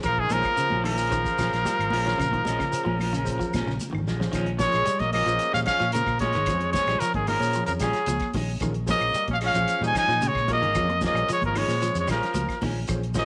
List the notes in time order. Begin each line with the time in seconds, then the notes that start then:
0.03 A#1 A#4, muted clean electric guitar stroke, kick, closed hi-hat, high conga, low conga, claves, shekere
0.08 F3
0.18 D#3 G#4, kick
0.30 A#1 D#3 F3 G#3 C#4 F4 G#4 A#4 C5, closed hi-hat, high conga, shekere
0.35 F3
0.43 kick, closed hi-hat, claves, shekere
0.57 C#3 C#4 F4 G#4 C5, muted fingered electric bass stroke, closed hi-hat, high conga, shekere
0.70 A#1 G#3 C#4, high conga
0.84 D#3 F3 G#3 C#4 A#4, open hi-hat, high conga, claves, shekere
0.90 F3
0.98 G#3 C#4, shekere
1.10 D#3 C#4 F4 G#4 C5, kick, closed hi-hat, high conga, shekere
1.24 kick, closed hi-hat, low conga, shekere
1.38 A#1 F3 G#3 C#4, kick, snare, closed hi-hat, claves, shekere
1.53 A#1, snare, closed hi-hat, shekere
1.65 G3, snare, closed hi-hat, high conga, shekere
1.79 G#1, closed hi-hat, claves
1.90 A#1 F3 G#3 C#4, open hi-hat, high conga, shekere
2.05 C#4 F4 G#4 C#5, snare, closed hi-hat
2.18 A#1 C#3, kick, closed hi-hat, high conga, low conga, claves, shekere
2.31 D#3, kick, closed hi-hat, high conga
2.45 A#1 F3 G#3 C#4 F4 G#4 D#5, closed hi-hat, high conga, shekere
2.59 C#3, kick, snare, closed hi-hat, claves, shekere
2.72 C#4 F4 G#4 C5, muted fingered electric bass stroke, closed hi-hat, shekere
2.85 A#1 F3 G#3 C#4, high conga
2.98 F3 C#4, open hi-hat, high conga, claves, shekere
3.13 C#3 G#3 C#4, closed hi-hat, low conga, shekere
3.24 C#4 F4 G#4 C5, kick, closed hi-hat, high conga, shekere
3.39 F3, kick, closed hi-hat, low conga, shekere
3.54 A#1 F3 G#3 C#4, kick, snare, closed hi-hat, high conga, claves, shekere
3.62 high conga
3.66 A#1 C#3, snare, shekere
3.80 closed hi-hat, high conga, shekere
3.90 G#1 D#3, low conga
3.95 low conga, claves
4.06 A#1 F3 G#3, snare, low conga, shekere
4.17 F3 C#4 F4 G#4, low conga
4.21 C5, snare, low conga
4.32 A#1 D#3 F3 G#3 C#4 F4 G#4 C5, kick, closed hi-hat, high conga, low conga, claves, shekere
4.46 closed hi-hat
4.59 F3 G#3 C#4 F4 G#4 A#4 C#5, kick, snare, closed hi-hat, high conga, shekere
4.63 G#3, muted clean electric guitar stroke
4.72 A#1 G#3 C#4, snare, closed hi-hat, claves, shekere
4.85 G3, closed hi-hat, high conga, shekere
4.99 A#1 A#3 D#5, kick, snare, closed hi-hat, high conga
5.13 F3 G#3 A#3 C#4 G#4 C5 D#5, open hi-hat, high conga, claves, shekere
5.26 A#1 F3 C#4 F4 G#4 C5, closed hi-hat, shekere
5.39 closed hi-hat, high conga, shekere
5.53 A#2 G3 C#4 F5, low conga, shekere
5.66 F3 C#4 F5, muted fingered electric bass stroke, kick, snare, closed hi-hat, claves, shekere
5.70 G#3 C#4
5.79 A#2 F3, snare, closed hi-hat, shekere
5.92 C#3 F3 A#4, closed hi-hat, high conga, shekere
6.06 A#2, kick, snare, claves
6.19 F3 G#3 C#4 C#5, kick, snare, closed hi-hat, high conga, shekere
6.33 G#1 D#3 C#4, snare, closed hi-hat
6.37 G#3
6.46 F2 F3 C#4 F4 G#4 C5, kick, closed hi-hat, high conga, low conga, claves, shekere
6.60 closed hi-hat
6.72 F3 G#3 C#4 F4 G#4 C5 C#5, kick, snare, closed hi-hat, high conga, shekere
6.76 C#4
6.87 A#1 G3 G#3 C#4, snare, closed hi-hat, claves, shekere
7.00 F3 A#4, muted fingered electric bass stroke, snare, closed hi-hat, high conga, shekere
7.14 G#1 D#3 G#4, kick, closed hi-hat, high conga
7.27 D#3 F3 G#3 C#4 G#4 A#4 C5, open hi-hat, high conga, claves, shekere
7.40 A#2 C#4 F4 G#4 C#5, shekere
7.53 F3, closed hi-hat, high conga, shekere
7.66 F2 F3 A#4, closed hi-hat, low conga, shekere
7.80 A#1 C#3 F3 G3 G#3 C#4 G#4, kick, snare, closed hi-hat, claves, shekere
7.93 snare, closed hi-hat, shekere
8.06 C#2 F3, closed hi-hat, high conga, shekere
8.20 kick, snare, closed hi-hat, claves
8.34 A#1 D#3 G#3 C#4, kick, snare, open hi-hat, high conga, shekere
8.60 A#1 D#3 C#4 F4 G#4 A#4, kick, closed hi-hat, high conga, low conga, claves, shekere
8.74 closed hi-hat
8.87 F3 G#3 A#3 C#4 F4 G#4 C5, kick, snare, closed hi-hat, high conga, shekere
8.91 D#5
9.01 A#1 G#3, closed hi-hat, claves, shekere
9.14 G3, closed hi-hat, high conga, shekere
9.28 A#1 C#4, kick, closed hi-hat, high conga
9.33 F5
9.41 F3 G#3 C#4 G#4 D#5, snare, open hi-hat, claves, shekere
9.46 F5
9.54 A#1 F3 C#4 F4 G#4 C5, closed hi-hat, low conga, shekere
9.68 closed hi-hat, high conga, shekere
9.81 A#2 G3 D#4, low conga, shekere
9.87 G#5
9.94 F3 G#3 C#4 D#4, kick, snare, closed hi-hat, claves, shekere
9.99 G#5
10.08 A#2 F3, snare, closed hi-hat, shekere
10.21 C#3 G#3, closed hi-hat, high conga, shekere
10.28 C#5
10.35 A#2, kick, snare, claves
10.48 F3 G#3 A#3, muted clean electric guitar stroke, kick, closed hi-hat, high conga, shekere
10.53 D#5
10.61 G#1 D#3 G#3 C#4, closed hi-hat
10.75 F2 F3 C#4 F4 G#4 C#5, kick, closed hi-hat, high conga, low conga, claves, shekere
10.89 muted clean electric guitar stroke, closed hi-hat, high conga
11.01 F3 G#3 C#4 F4 G#4 C5, kick, snare, closed hi-hat, high conga, shekere
11.05 A#3 D#5
11.14 A#1 G3 G#3 C#4, closed hi-hat, claves, shekere
11.29 F3 G#3, closed hi-hat, high conga, shekere
11.33 C#5
11.42 G#1 A#4, kick, closed hi-hat, high conga
11.47 F3
11.55 D#3 F3 G#3 C#4 G#4 A#4 C#5, open hi-hat, high conga, claves, shekere
11.68 A#2 C#4 F4 G#4 C5, snare, shekere
11.82 F3, snare, closed hi-hat, high conga, shekere
11.95 F2, closed hi-hat, low conga, shekere
11.99 G#3 C#5
12.08 A#1 F3 G3 G#3 C#4 A#4, kick, snare, closed hi-hat, claves, shekere
12.12 F3
12.22 snare, closed hi-hat, shekere
12.34 C#2 F3, closed hi-hat, high conga, shekere
12.49 kick, snare, closed hi-hat, claves
12.61 A#1 D#3 F3 G#3 C#4, kick, snare, open hi-hat, high conga, shekere
12.88 A#1 C#4 F4 G#4 C5, muted clean electric guitar stroke, kick, closed hi-hat, high conga, low conga, claves, shekere
13.03 closed hi-hat
13.14 F3 G#3 A#3 C#4 F4 G#4 C5, kick, snare, closed hi-hat, high conga, shekere
13.18 D#5